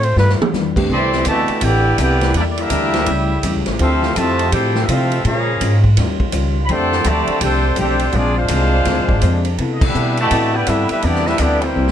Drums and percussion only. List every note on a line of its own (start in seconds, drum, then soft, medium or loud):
0.03 ride soft
0.17 snare medium
0.29 snare medium
0.42 mid tom loud
0.54 snare medium
0.54 hi-hat pedal soft
0.76 kick medium
0.76 crash medium
0.90 kick soft
1.13 snare medium
1.25 kick soft
1.25 hi-hat pedal medium
1.25 ride medium
1.48 ride medium
1.61 kick soft
1.61 ride medium
1.98 kick soft
1.98 hi-hat pedal medium
1.98 ride medium
2.21 snare medium
2.21 ride medium
2.34 kick soft
2.34 ride medium
2.58 ride medium
2.70 kick soft
2.70 hi-hat pedal medium
2.70 ride medium
2.94 snare medium
2.94 ride medium
3.06 kick soft
3.06 ride medium
3.43 kick soft
3.43 hi-hat pedal medium
3.43 ride medium
3.66 snare medium
3.66 ride medium
3.79 kick soft
3.79 ride medium
4.03 snare soft
4.16 kick soft
4.16 hi-hat pedal medium
4.16 ride medium
4.39 ride medium
4.52 kick soft
4.52 ride medium
4.75 snare medium
4.88 kick soft
4.88 hi-hat pedal medium
4.88 ride medium
5.12 ride medium
5.25 kick soft
5.25 ride medium
5.61 kick soft
5.61 hi-hat pedal medium
5.61 ride medium
5.84 kick medium
5.97 kick soft
5.97 snare soft
5.97 ride medium
6.20 kick medium
6.32 kick soft
6.32 hi-hat pedal medium
6.32 ride medium
6.69 kick soft
6.69 ride medium
6.92 snare soft
7.04 kick soft
7.04 hi-hat pedal medium
7.04 ride medium
7.27 ride medium
7.41 kick soft
7.41 ride medium
7.76 kick soft
7.76 hi-hat pedal medium
7.76 ride medium
7.99 ride medium
8.12 kick soft
8.12 ride medium
8.48 kick soft
8.48 hi-hat pedal medium
8.48 ride medium
8.85 kick soft
8.85 snare soft
8.85 ride medium
9.09 kick medium
9.22 kick soft
9.22 hi-hat pedal medium
9.22 ride medium
9.45 ride medium
9.58 kick soft
9.58 ride medium
9.81 kick loud
9.81 crash medium
9.95 hi-hat pedal medium
10.17 ride medium
10.31 kick soft
10.31 ride medium
10.67 kick soft
10.67 hi-hat pedal medium
10.67 ride medium
10.89 ride medium
11.02 kick soft
11.02 ride medium
11.15 snare soft
11.27 snare medium
11.38 kick soft
11.38 hi-hat pedal medium
11.38 ride medium
11.62 ride medium
11.88 snare medium